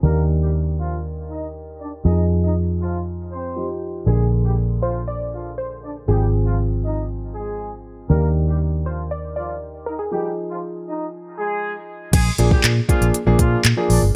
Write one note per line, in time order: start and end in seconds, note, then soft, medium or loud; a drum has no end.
0.03 2.01 D#2 medium
0.03 2.01 D#3 medium
0.03 0.21 A#3 medium
0.03 2.01 D4 medium
0.03 2.01 G4 medium
0.03 0.21 A#4 medium
0.41 0.51 G3 medium
0.41 0.50 G4 medium
0.79 0.97 F3 medium
0.79 0.97 F4 medium
1.29 1.47 D#4 medium
1.29 1.47 D#5 medium
1.80 1.89 D4 medium
1.80 1.89 D5 medium
2.04 4.03 F2 medium
2.04 3.53 F3 medium
2.04 2.23 D#4 medium
2.04 3.53 D#4 medium
2.04 3.53 G#4 medium
2.04 2.23 D#5 medium
2.43 2.52 D#4 medium
2.43 2.52 D#5 medium
2.80 2.99 F3 medium
2.80 2.98 F4 medium
3.31 3.67 C4 medium
3.31 3.66 C5 medium
3.56 4.07 F3 soft
3.56 4.07 D#4 soft
3.56 4.07 G4 medium
4.06 6.04 A#1 medium
4.06 6.04 D3 medium
4.06 4.25 G#3 medium
4.06 6.04 A#3 medium
4.06 4.24 G#4 medium
4.06 6.04 G#4 medium
4.44 4.54 G3 medium
4.44 4.53 G4 medium
4.82 5.01 F3 medium
4.82 5.00 F4 medium
4.82 4.94 C5 loud
5.08 5.59 D5 loud
5.33 5.51 F3 medium
5.33 5.50 F4 medium
5.58 6.05 C5 medium
5.83 5.92 D4 medium
5.83 5.93 D5 medium
6.08 8.06 G#1 medium
6.08 8.06 F3 medium
6.08 6.27 G3 medium
6.08 8.06 C4 medium
6.08 6.26 G4 medium
6.08 6.55 G#4 medium
6.08 8.06 G#4 medium
6.46 6.56 F3 medium
6.46 6.55 F4 medium
6.84 7.02 D#4 medium
6.84 7.02 D#5 medium
7.34 7.70 G#3 medium
7.34 7.70 G#4 medium
8.09 10.08 D#2 medium
8.09 10.07 D#3 medium
8.09 8.28 A#3 medium
8.09 10.08 D4 medium
8.09 10.08 G4 medium
8.09 8.28 A#4 medium
8.48 8.57 G3 medium
8.48 8.57 G4 medium
8.85 9.04 F3 medium
8.85 9.03 F4 medium
8.85 9.12 C5 loud
9.11 9.35 D5 loud
9.36 9.54 F3 soft
9.36 9.54 F4 medium
9.36 9.88 D5 loud
9.86 9.95 D#4 medium
9.86 9.99 A#4 medium
9.86 9.96 D#5 medium
9.99 11.59 G#4 medium
10.11 12.09 F3 medium
10.11 10.30 G3 medium
10.11 12.09 D#4 medium
10.11 10.29 G4 medium
10.11 12.10 G#4 medium
10.49 10.58 F3 medium
10.49 10.58 F4 medium
10.87 11.05 D#4 medium
10.87 11.05 D#5 medium
11.37 11.74 G#3 medium
11.37 11.73 G#4 medium
12.13 12.29 A#1 loud
12.13 12.31 G#3 medium
12.13 12.31 G#4 loud
12.13 kick loud
12.13 closed hi-hat loud
12.13 crash loud
12.38 12.54 A#1 loud
12.38 12.71 F3 medium
12.38 12.71 A#3 medium
12.38 12.71 D4 medium
12.38 12.71 G#4 medium
12.38 closed hi-hat medium
12.51 12.61 G3 medium
12.51 12.60 G4 medium
12.51 kick loud
12.64 12.79 A#2 loud
12.64 clap loud
12.64 closed hi-hat medium
12.89 13.13 F3 medium
12.89 13.07 F3 medium
12.89 13.13 A#3 medium
12.89 13.13 D4 medium
12.89 13.06 F4 medium
12.89 13.13 G#4 medium
12.89 kick medium
12.89 closed hi-hat medium
13.01 13.09 A#1 loud
13.01 closed hi-hat medium
13.14 closed hi-hat loud
13.26 13.35 A#1 loud
13.26 13.59 F3 medium
13.26 13.59 A#3 medium
13.26 13.59 D4 medium
13.26 13.59 G#4 medium
13.39 13.55 A#2 loud
13.39 13.58 F3 medium
13.39 13.57 F4 medium
13.39 kick medium
13.39 closed hi-hat medium
13.65 13.72 A#2 loud
13.65 clap loud
13.65 closed hi-hat loud
13.77 14.01 F3 medium
13.77 14.01 A#3 medium
13.77 14.02 D4 medium
13.77 14.02 G#4 medium
13.90 13.97 A#1 medium
13.90 13.99 D4 medium
13.90 13.99 D5 medium
13.90 open hi-hat medium
14.02 14.10 G1 medium